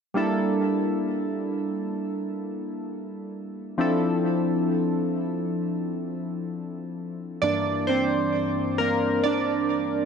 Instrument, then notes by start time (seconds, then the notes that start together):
synth keys
0.14 G3 A#3 D4 E4 A4
3.78 F3 C4 D4 E4 A4
7.42 G2 E3 A#3 D4 D5
7.87 C4 C5
8.78 A#3 A#4
9.24 D4 D5